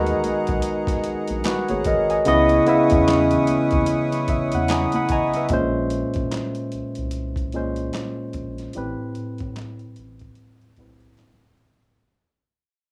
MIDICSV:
0, 0, Header, 1, 6, 480
1, 0, Start_track
1, 0, Tempo, 810811
1, 1336, Time_signature, 4, 2, 24, 8
1, 7648, End_track
2, 0, Start_track
2, 0, Title_t, "Accordion"
2, 0, Program_c, 0, 21
2, 0, Note_on_c, 0, 68, 70
2, 0, Note_on_c, 0, 78, 63
2, 0, Note_on_c, 0, 82, 73
2, 1317, Note_off_c, 0, 82, 0
2, 1318, Note_off_c, 0, 68, 0
2, 1318, Note_off_c, 0, 78, 0
2, 1337, Note_on_c, 0, 71, 69
2, 1338, Note_on_c, 0, 64, 61
2, 1340, Note_on_c, 0, 85, 64
2, 1340, Note_on_c, 0, 87, 79
2, 3237, Note_off_c, 0, 71, 0
2, 3238, Note_off_c, 0, 64, 0
2, 3239, Note_off_c, 0, 85, 0
2, 3239, Note_off_c, 0, 87, 0
2, 7648, End_track
3, 0, Start_track
3, 0, Title_t, "Tine electric piano"
3, 0, Program_c, 1, 4
3, 0, Control_c, 1, 64, 127
3, 0, Note_on_c, 1, 56, 78
3, 0, Note_on_c, 1, 66, 81
3, 0, Note_on_c, 1, 70, 77
3, 0, Note_on_c, 1, 71, 93
3, 549, Note_off_c, 1, 56, 0
3, 553, Note_off_c, 1, 66, 0
3, 555, Note_off_c, 1, 70, 0
3, 558, Note_off_c, 1, 71, 0
3, 866, Note_on_c, 1, 71, 65
3, 870, Note_on_c, 1, 66, 59
3, 998, Note_off_c, 1, 71, 0
3, 1001, Note_off_c, 1, 66, 0
3, 1008, Note_on_c, 1, 73, 61
3, 1011, Note_on_c, 1, 68, 62
3, 1095, Note_off_c, 1, 73, 0
3, 1097, Note_off_c, 1, 68, 0
3, 1105, Note_on_c, 1, 75, 74
3, 1108, Note_on_c, 1, 70, 60
3, 1238, Note_off_c, 1, 75, 0
3, 1240, Note_off_c, 1, 70, 0
3, 1246, Note_on_c, 1, 80, 59
3, 1252, Note_on_c, 1, 75, 51
3, 1334, Note_on_c, 1, 49, 89
3, 1340, Note_on_c, 1, 59, 77
3, 1343, Note_off_c, 1, 75, 0
3, 1344, Control_c, 1, 64, 0
3, 1344, Note_on_c, 1, 64, 84
3, 1350, Note_on_c, 1, 75, 99
3, 1451, Control_c, 1, 64, 127
3, 1472, Note_off_c, 1, 80, 0
3, 1559, Note_off_c, 1, 49, 0
3, 1561, Note_off_c, 1, 59, 0
3, 1563, Note_off_c, 1, 64, 0
3, 1567, Note_off_c, 1, 75, 0
3, 1577, Note_on_c, 1, 49, 85
3, 1582, Note_on_c, 1, 59, 68
3, 1585, Note_on_c, 1, 64, 78
3, 1593, Note_on_c, 1, 76, 83
3, 2470, Note_off_c, 1, 49, 0
3, 2473, Note_off_c, 1, 59, 0
3, 2475, Note_off_c, 1, 64, 0
3, 2478, Note_off_c, 1, 76, 0
3, 2544, Note_on_c, 1, 76, 63
3, 2675, Note_off_c, 1, 76, 0
3, 2692, Note_on_c, 1, 78, 75
3, 2776, Note_off_c, 1, 78, 0
3, 2788, Note_on_c, 1, 80, 71
3, 2788, Note_on_c, 1, 87, 65
3, 2791, Note_on_c, 1, 82, 53
3, 2919, Note_off_c, 1, 87, 0
3, 2921, Note_off_c, 1, 82, 0
3, 2933, Note_on_c, 1, 83, 72
3, 2937, Note_on_c, 1, 78, 58
3, 3006, Note_off_c, 1, 80, 0
3, 3018, Note_off_c, 1, 83, 0
3, 3020, Note_off_c, 1, 78, 0
3, 3029, Note_on_c, 1, 80, 72
3, 3030, Note_on_c, 1, 82, 65
3, 3035, Note_on_c, 1, 75, 55
3, 3160, Note_off_c, 1, 80, 0
3, 3163, Note_off_c, 1, 75, 0
3, 3176, Note_on_c, 1, 76, 61
3, 3178, Note_on_c, 1, 71, 48
3, 3247, Note_off_c, 1, 82, 0
3, 3260, Note_on_c, 1, 46, 80
3, 3263, Control_c, 1, 64, 0
3, 3265, Note_on_c, 1, 56, 70
3, 3271, Note_on_c, 1, 61, 76
3, 3276, Note_on_c, 1, 72, 89
3, 3362, Control_c, 1, 64, 127
3, 3396, Note_off_c, 1, 76, 0
3, 3398, Note_off_c, 1, 71, 0
3, 4152, Note_off_c, 1, 46, 0
3, 4154, Note_off_c, 1, 56, 0
3, 4157, Note_off_c, 1, 61, 0
3, 4160, Note_off_c, 1, 72, 0
3, 4461, Note_on_c, 1, 46, 65
3, 4467, Note_on_c, 1, 56, 60
3, 4472, Note_on_c, 1, 61, 63
3, 4478, Note_on_c, 1, 72, 73
3, 5129, Note_off_c, 1, 46, 0
3, 5132, Note_off_c, 1, 56, 0
3, 5135, Note_off_c, 1, 61, 0
3, 5137, Note_off_c, 1, 72, 0
3, 5178, Note_on_c, 1, 45, 73
3, 5183, Control_c, 1, 64, 0
3, 5185, Note_on_c, 1, 55, 71
3, 5189, Note_on_c, 1, 60, 72
3, 5196, Note_on_c, 1, 71, 85
3, 5303, Control_c, 1, 64, 127
3, 6071, Note_off_c, 1, 45, 0
3, 6074, Note_off_c, 1, 55, 0
3, 6076, Note_off_c, 1, 60, 0
3, 6080, Note_off_c, 1, 71, 0
3, 6379, Note_on_c, 1, 45, 62
3, 6385, Note_on_c, 1, 55, 55
3, 6389, Note_on_c, 1, 60, 55
3, 6396, Note_on_c, 1, 71, 68
3, 7048, Note_off_c, 1, 45, 0
3, 7051, Note_off_c, 1, 55, 0
3, 7053, Note_off_c, 1, 60, 0
3, 7056, Note_off_c, 1, 71, 0
3, 7103, Control_c, 1, 64, 0
3, 7648, End_track
4, 0, Start_track
4, 0, Title_t, "Trombone section"
4, 0, Program_c, 2, 61
4, 0, Note_on_c, 2, 51, 72
4, 0, Note_on_c, 2, 59, 65
4, 0, Note_on_c, 2, 63, 79
4, 1072, Note_off_c, 2, 59, 0
4, 1073, Note_off_c, 2, 51, 0
4, 1073, Note_off_c, 2, 63, 0
4, 1338, Note_on_c, 2, 52, 66
4, 1338, Note_on_c, 2, 56, 66
4, 1338, Note_on_c, 2, 61, 82
4, 2993, Note_off_c, 2, 56, 0
4, 2994, Note_off_c, 2, 52, 0
4, 2994, Note_off_c, 2, 61, 0
4, 7648, End_track
5, 0, Start_track
5, 0, Title_t, "Analog synth bass"
5, 0, Program_c, 3, 38
5, 0, Note_on_c, 3, 39, 86
5, 82, Note_off_c, 3, 39, 0
5, 147, Note_on_c, 3, 35, 49
5, 202, Note_off_c, 3, 35, 0
5, 294, Note_on_c, 3, 35, 94
5, 367, Note_off_c, 3, 35, 0
5, 627, Note_on_c, 3, 34, 51
5, 682, Note_off_c, 3, 34, 0
5, 770, Note_on_c, 3, 34, 86
5, 844, Note_off_c, 3, 34, 0
5, 1011, Note_on_c, 3, 32, 83
5, 1085, Note_off_c, 3, 32, 0
5, 1103, Note_on_c, 3, 32, 77
5, 1296, Note_off_c, 3, 32, 0
5, 1346, Note_on_c, 3, 37, 88
5, 1538, Note_off_c, 3, 37, 0
5, 1732, Note_on_c, 3, 40, 91
5, 2002, Note_off_c, 3, 40, 0
5, 2068, Note_on_c, 3, 39, 39
5, 2122, Note_off_c, 3, 39, 0
5, 2211, Note_on_c, 3, 39, 86
5, 2285, Note_off_c, 3, 39, 0
5, 2542, Note_on_c, 3, 40, 46
5, 2598, Note_off_c, 3, 40, 0
5, 2690, Note_on_c, 3, 40, 87
5, 2882, Note_off_c, 3, 40, 0
5, 3261, Note_on_c, 3, 34, 103
5, 3573, Note_off_c, 3, 34, 0
5, 3652, Note_on_c, 3, 36, 42
5, 3687, Note_off_c, 3, 36, 0
5, 3989, Note_on_c, 3, 36, 44
5, 4043, Note_off_c, 3, 36, 0
5, 4134, Note_on_c, 3, 36, 83
5, 4679, Note_off_c, 3, 36, 0
5, 4944, Note_on_c, 3, 34, 74
5, 5137, Note_off_c, 3, 34, 0
5, 5187, Note_on_c, 3, 33, 96
5, 5301, Note_off_c, 3, 33, 0
5, 5430, Note_on_c, 3, 45, 44
5, 5484, Note_off_c, 3, 45, 0
5, 5573, Note_on_c, 3, 45, 101
5, 5842, Note_off_c, 3, 45, 0
5, 5912, Note_on_c, 3, 33, 72
5, 6102, Note_off_c, 3, 33, 0
5, 6384, Note_on_c, 3, 35, 81
5, 6577, Note_off_c, 3, 35, 0
5, 7648, End_track
6, 0, Start_track
6, 0, Title_t, "Drums"
6, 38, Note_on_c, 9, 42, 48
6, 54, Note_on_c, 9, 64, 64
6, 98, Note_off_c, 9, 42, 0
6, 113, Note_off_c, 9, 64, 0
6, 137, Note_on_c, 9, 63, 54
6, 141, Note_on_c, 9, 42, 64
6, 196, Note_off_c, 9, 63, 0
6, 200, Note_off_c, 9, 42, 0
6, 278, Note_on_c, 9, 42, 45
6, 288, Note_on_c, 9, 36, 80
6, 337, Note_off_c, 9, 42, 0
6, 347, Note_off_c, 9, 36, 0
6, 368, Note_on_c, 9, 42, 85
6, 427, Note_off_c, 9, 42, 0
6, 516, Note_on_c, 9, 36, 90
6, 523, Note_on_c, 9, 42, 53
6, 528, Note_on_c, 9, 38, 34
6, 576, Note_off_c, 9, 36, 0
6, 582, Note_off_c, 9, 42, 0
6, 587, Note_off_c, 9, 38, 0
6, 614, Note_on_c, 9, 42, 68
6, 673, Note_off_c, 9, 42, 0
6, 755, Note_on_c, 9, 42, 52
6, 768, Note_on_c, 9, 63, 52
6, 814, Note_off_c, 9, 42, 0
6, 827, Note_off_c, 9, 63, 0
6, 852, Note_on_c, 9, 42, 90
6, 859, Note_on_c, 9, 62, 38
6, 862, Note_on_c, 9, 38, 124
6, 862, Note_on_c, 9, 39, 99
6, 912, Note_off_c, 9, 42, 0
6, 918, Note_off_c, 9, 62, 0
6, 921, Note_off_c, 9, 38, 0
6, 922, Note_off_c, 9, 39, 0
6, 998, Note_on_c, 9, 42, 47
6, 1004, Note_on_c, 9, 62, 32
6, 1004, Note_on_c, 9, 63, 74
6, 1057, Note_off_c, 9, 42, 0
6, 1063, Note_off_c, 9, 62, 0
6, 1063, Note_off_c, 9, 63, 0
6, 1092, Note_on_c, 9, 42, 65
6, 1098, Note_on_c, 9, 36, 72
6, 1102, Note_on_c, 9, 64, 71
6, 1151, Note_off_c, 9, 42, 0
6, 1157, Note_off_c, 9, 36, 0
6, 1161, Note_off_c, 9, 64, 0
6, 1242, Note_on_c, 9, 42, 51
6, 1302, Note_off_c, 9, 42, 0
6, 1333, Note_on_c, 9, 42, 79
6, 1344, Note_on_c, 9, 64, 69
6, 1392, Note_off_c, 9, 42, 0
6, 1403, Note_off_c, 9, 64, 0
6, 1476, Note_on_c, 9, 42, 43
6, 1483, Note_on_c, 9, 62, 31
6, 1535, Note_off_c, 9, 42, 0
6, 1543, Note_off_c, 9, 62, 0
6, 1578, Note_on_c, 9, 42, 59
6, 1637, Note_off_c, 9, 42, 0
6, 1715, Note_on_c, 9, 42, 58
6, 1724, Note_on_c, 9, 63, 66
6, 1727, Note_on_c, 9, 36, 107
6, 1774, Note_off_c, 9, 42, 0
6, 1783, Note_off_c, 9, 63, 0
6, 1786, Note_off_c, 9, 36, 0
6, 1822, Note_on_c, 9, 42, 69
6, 1825, Note_on_c, 9, 38, 102
6, 1826, Note_on_c, 9, 39, 79
6, 1881, Note_off_c, 9, 42, 0
6, 1885, Note_off_c, 9, 38, 0
6, 1885, Note_off_c, 9, 39, 0
6, 1958, Note_on_c, 9, 42, 53
6, 1972, Note_on_c, 9, 62, 29
6, 1972, Note_on_c, 9, 64, 69
6, 2017, Note_off_c, 9, 42, 0
6, 2031, Note_off_c, 9, 62, 0
6, 2031, Note_off_c, 9, 64, 0
6, 2054, Note_on_c, 9, 63, 54
6, 2055, Note_on_c, 9, 42, 65
6, 2113, Note_off_c, 9, 63, 0
6, 2115, Note_off_c, 9, 42, 0
6, 2195, Note_on_c, 9, 42, 46
6, 2205, Note_on_c, 9, 36, 89
6, 2254, Note_off_c, 9, 42, 0
6, 2265, Note_off_c, 9, 36, 0
6, 2287, Note_on_c, 9, 42, 80
6, 2301, Note_on_c, 9, 62, 31
6, 2346, Note_off_c, 9, 42, 0
6, 2360, Note_off_c, 9, 62, 0
6, 2441, Note_on_c, 9, 42, 52
6, 2446, Note_on_c, 9, 38, 37
6, 2501, Note_off_c, 9, 42, 0
6, 2506, Note_off_c, 9, 38, 0
6, 2533, Note_on_c, 9, 42, 67
6, 2535, Note_on_c, 9, 36, 84
6, 2592, Note_off_c, 9, 42, 0
6, 2595, Note_off_c, 9, 36, 0
6, 2674, Note_on_c, 9, 42, 57
6, 2686, Note_on_c, 9, 63, 49
6, 2733, Note_off_c, 9, 42, 0
6, 2745, Note_off_c, 9, 63, 0
6, 2773, Note_on_c, 9, 42, 91
6, 2779, Note_on_c, 9, 62, 33
6, 2782, Note_on_c, 9, 38, 117
6, 2782, Note_on_c, 9, 39, 91
6, 2832, Note_off_c, 9, 42, 0
6, 2839, Note_off_c, 9, 62, 0
6, 2841, Note_off_c, 9, 38, 0
6, 2842, Note_off_c, 9, 39, 0
6, 2913, Note_on_c, 9, 42, 47
6, 2923, Note_on_c, 9, 62, 29
6, 2923, Note_on_c, 9, 63, 67
6, 2972, Note_off_c, 9, 42, 0
6, 2982, Note_off_c, 9, 62, 0
6, 2982, Note_off_c, 9, 63, 0
6, 3011, Note_on_c, 9, 42, 66
6, 3017, Note_on_c, 9, 36, 75
6, 3019, Note_on_c, 9, 64, 73
6, 3070, Note_off_c, 9, 42, 0
6, 3076, Note_off_c, 9, 36, 0
6, 3078, Note_off_c, 9, 64, 0
6, 3158, Note_on_c, 9, 42, 47
6, 3165, Note_on_c, 9, 38, 37
6, 3218, Note_off_c, 9, 42, 0
6, 3224, Note_off_c, 9, 38, 0
6, 3248, Note_on_c, 9, 42, 72
6, 3256, Note_on_c, 9, 36, 108
6, 3307, Note_off_c, 9, 42, 0
6, 3315, Note_off_c, 9, 36, 0
6, 3494, Note_on_c, 9, 42, 58
6, 3553, Note_off_c, 9, 42, 0
6, 3633, Note_on_c, 9, 42, 48
6, 3646, Note_on_c, 9, 36, 95
6, 3692, Note_off_c, 9, 42, 0
6, 3705, Note_off_c, 9, 36, 0
6, 3739, Note_on_c, 9, 42, 64
6, 3742, Note_on_c, 9, 38, 90
6, 3742, Note_on_c, 9, 39, 70
6, 3798, Note_off_c, 9, 42, 0
6, 3801, Note_off_c, 9, 38, 0
6, 3802, Note_off_c, 9, 39, 0
6, 3876, Note_on_c, 9, 42, 33
6, 3935, Note_off_c, 9, 42, 0
6, 3977, Note_on_c, 9, 42, 56
6, 4036, Note_off_c, 9, 42, 0
6, 4115, Note_on_c, 9, 42, 44
6, 4175, Note_off_c, 9, 42, 0
6, 4209, Note_on_c, 9, 42, 77
6, 4269, Note_off_c, 9, 42, 0
6, 4357, Note_on_c, 9, 36, 75
6, 4364, Note_on_c, 9, 42, 32
6, 4416, Note_off_c, 9, 36, 0
6, 4423, Note_off_c, 9, 42, 0
6, 4454, Note_on_c, 9, 42, 51
6, 4514, Note_off_c, 9, 42, 0
6, 4594, Note_on_c, 9, 42, 45
6, 4654, Note_off_c, 9, 42, 0
6, 4694, Note_on_c, 9, 42, 80
6, 4704, Note_on_c, 9, 38, 108
6, 4704, Note_on_c, 9, 39, 80
6, 4754, Note_off_c, 9, 42, 0
6, 4763, Note_off_c, 9, 38, 0
6, 4763, Note_off_c, 9, 39, 0
6, 4933, Note_on_c, 9, 42, 51
6, 4939, Note_on_c, 9, 36, 73
6, 4992, Note_off_c, 9, 42, 0
6, 4998, Note_off_c, 9, 36, 0
6, 5081, Note_on_c, 9, 42, 41
6, 5087, Note_on_c, 9, 38, 33
6, 5140, Note_off_c, 9, 42, 0
6, 5146, Note_off_c, 9, 38, 0
6, 5170, Note_on_c, 9, 42, 71
6, 5229, Note_off_c, 9, 42, 0
6, 5417, Note_on_c, 9, 42, 53
6, 5476, Note_off_c, 9, 42, 0
6, 5555, Note_on_c, 9, 42, 45
6, 5568, Note_on_c, 9, 36, 86
6, 5614, Note_off_c, 9, 42, 0
6, 5627, Note_off_c, 9, 36, 0
6, 5659, Note_on_c, 9, 42, 62
6, 5663, Note_on_c, 9, 38, 90
6, 5663, Note_on_c, 9, 39, 74
6, 5718, Note_off_c, 9, 42, 0
6, 5722, Note_off_c, 9, 38, 0
6, 5722, Note_off_c, 9, 39, 0
6, 5797, Note_on_c, 9, 42, 31
6, 5856, Note_off_c, 9, 42, 0
6, 5896, Note_on_c, 9, 42, 58
6, 5956, Note_off_c, 9, 42, 0
6, 6035, Note_on_c, 9, 42, 43
6, 6047, Note_on_c, 9, 36, 68
6, 6094, Note_off_c, 9, 42, 0
6, 6106, Note_off_c, 9, 36, 0
6, 6129, Note_on_c, 9, 42, 66
6, 6188, Note_off_c, 9, 42, 0
6, 6284, Note_on_c, 9, 42, 30
6, 6343, Note_off_c, 9, 42, 0
6, 6373, Note_on_c, 9, 42, 48
6, 6378, Note_on_c, 9, 36, 78
6, 6432, Note_off_c, 9, 42, 0
6, 6437, Note_off_c, 9, 36, 0
6, 6515, Note_on_c, 9, 42, 43
6, 6574, Note_off_c, 9, 42, 0
6, 6614, Note_on_c, 9, 42, 75
6, 6623, Note_on_c, 9, 38, 98
6, 6624, Note_on_c, 9, 39, 77
6, 6673, Note_off_c, 9, 42, 0
6, 6683, Note_off_c, 9, 38, 0
6, 6683, Note_off_c, 9, 39, 0
6, 6851, Note_on_c, 9, 42, 52
6, 6910, Note_off_c, 9, 42, 0
6, 7000, Note_on_c, 9, 42, 42
6, 7006, Note_on_c, 9, 38, 30
6, 7059, Note_off_c, 9, 42, 0
6, 7065, Note_off_c, 9, 38, 0
6, 7648, End_track
0, 0, End_of_file